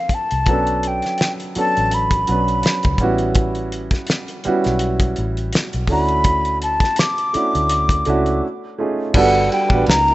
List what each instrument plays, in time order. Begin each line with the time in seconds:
Already playing: upright piano F3 A#3 C4 D4 A4, flute F5
0.09 muted fingered electric bass stroke, kick, closed hi-hat
0.14 flute A5
0.31 fingered electric bass C2, closed hi-hat
0.46 fingered electric bass B1, upright piano F#3 B3 C#4, kick, closed hi-hat
0.50 upright piano D4 A4
0.67 closed hi-hat
0.83 closed hi-hat
0.87 flute G5
1.02 snare, closed hi-hat
1.18 snare, closed hi-hat
1.40 closed hi-hat
1.55 upright piano F#3 B3 C#4 D4 A4, flute A5, muted fingered electric bass stroke, closed hi-hat
1.77 fingered electric bass A1, closed hi-hat
1.91 flute B5, closed hi-hat
2.11 kick, closed hi-hat
2.27 fingered electric bass B1, upright piano F#3 B3 C#4 D4 B4, closed hi-hat
2.48 closed hi-hat
2.63 snare, closed hi-hat
2.83 fingered electric bass C#2, kick, closed hi-hat
2.98 fingered electric bass A1, upright piano G3 B3 C#4, kick, closed hi-hat
3.03 upright piano E4 F#4
3.18 closed hi-hat
3.35 kick, closed hi-hat
3.55 closed hi-hat
3.72 closed hi-hat
3.91 kick, snare, closed hi-hat
4.07 snare, closed hi-hat
4.28 closed hi-hat
4.44 upright piano G3 B3 C#4 E4 F#4, muted fingered electric bass stroke, closed hi-hat
4.64 fingered electric bass B1, snare, closed hi-hat
4.79 closed hi-hat
5.00 kick, closed hi-hat
5.16 fingered electric bass A1, closed hi-hat
5.37 closed hi-hat
5.53 snare, closed hi-hat
5.73 fingered electric bass B1, closed hi-hat
5.87 fingered electric bass D2, upright piano A3 C#4 D4 E4, kick, open hi-hat
5.92 upright piano F#4, flute B5
6.09 closed hi-hat
6.24 kick, closed hi-hat
6.45 closed hi-hat
6.62 flute A5, closed hi-hat
6.80 kick, snare, closed hi-hat
6.96 flute D6, snare, closed hi-hat
7.18 closed hi-hat
7.33 upright piano A3 C#4 D4 E4 F#4, muted fingered electric bass stroke, closed hi-hat
7.55 fingered electric bass D2, closed hi-hat
7.70 closed hi-hat
7.89 kick, closed hi-hat
8.05 fingered electric bass C#2, upright piano A3 C#4 D4 E4 F#4, closed hi-hat
8.26 closed hi-hat
8.78 upright piano A3 C#4 D#4 F4 G#4
9.14 fingered electric bass G1, upright piano G3 B3 D4 F#4 A4, tonewheel organ G3 D4 A4 B4, flute F#5, kick, crash
9.35 ride
9.52 flute G5, ride
9.70 fingered electric bass A1, upright piano G3 B3 D4 F#4 B4, kick, ride
9.86 fingered electric bass C#2, tonewheel organ C#3 A#3 D#4 F4, flute A#5, snare, ride
10.08 ride